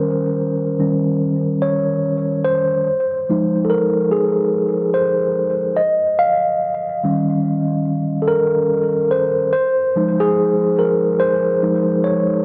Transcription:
0.00 0.79 D#3 medium
0.00 0.80 G3 medium
0.00 0.80 C#4 medium
0.00 0.75 A#4 medium
0.00 2.44 C5 medium
0.79 1.17 D#3 soft
0.79 1.17 G3 soft
0.79 1.17 C#4 medium
1.62 2.48 C#5 medium
2.44 3.68 C5 medium
3.29 4.50 F3 soft
3.29 4.50 G#3 soft
3.29 4.50 D#4 medium
3.65 3.70 A4 medium
3.70 4.13 A#4 medium
4.11 4.97 G#4 medium
4.94 5.80 C5 medium
5.77 6.20 D#5 medium
6.19 7.82 F5 medium
7.04 9.50 D#3 soft
7.04 9.50 G3 soft
7.04 9.50 C#4 medium
8.22 8.28 A4 medium
8.28 9.14 A#4 medium
9.11 9.51 C5 medium
9.53 10.22 C5 loud
9.96 11.16 F3 medium
9.96 11.17 G#3 soft
9.96 11.17 D#4 medium
10.20 10.80 G#4 medium
10.79 11.21 A#4 medium
11.20 12.06 C5 medium
11.63 12.00 F3 soft
11.63 12.00 G#3 soft
11.63 12.00 D#4 medium
12.04 12.45 C#5 medium

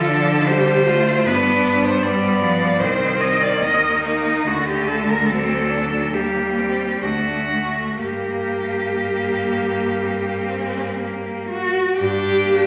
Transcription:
0.00 1.25 D3 medium
0.00 0.10 F4 loud
0.00 0.49 A4 loud
0.09 0.50 F3 medium
0.09 0.49 D4 medium
0.47 0.90 G3 medium
0.47 0.88 G4 loud
0.47 1.27 C5 loud
0.86 1.28 A3 medium
0.86 1.28 F4 medium
1.26 2.81 G2 loud
1.26 2.02 B3 medium
1.26 2.01 D4 loud
1.26 1.83 B4 loud
1.84 2.03 C5 loud
2.02 2.43 G3 medium
2.02 2.83 B3 medium
2.02 2.81 D5 loud
2.41 2.82 F3 medium
2.79 3.63 C2 medium
2.79 4.45 D#3 medium
2.79 3.63 C4 loud
2.79 3.22 C5 loud
3.21 3.44 D#5 loud
3.42 3.64 D5 loud
3.62 4.44 D#2 medium
3.62 4.48 A#3 medium
3.62 4.03 D#5 loud
4.03 4.49 D#4 loud
4.45 6.15 D2 medium
4.45 5.31 D3 medium
4.45 5.29 A3 medium
4.45 4.68 F#4 loud
4.69 4.89 G4 medium
4.88 5.10 A4 loud
5.09 5.28 A#4 loud
5.27 6.16 F#3 medium
5.27 5.72 C4 medium
5.27 6.16 A4 loud
5.70 6.14 D4 medium
6.14 7.01 D#2 medium
6.14 7.05 G3 medium
6.14 6.60 A#3 medium
6.14 7.04 G4 loud
6.58 7.04 C4 medium
7.01 8.01 D2 medium
7.01 7.98 A3 medium
7.01 7.51 D4 medium
7.01 7.99 F#4 loud
7.49 8.01 A3 medium
7.99 11.76 G2 medium
7.99 11.72 A#3 medium
7.99 8.94 A#3 medium
7.99 11.47 G4 loud
9.02 10.05 A#3 medium
10.04 11.03 C4 medium
11.01 11.49 A#3 medium
11.50 11.94 F#4 medium
11.97 12.67 G2 medium
11.97 12.67 D4 loud
11.97 12.67 G4 loud
12.42 12.67 A#3 medium

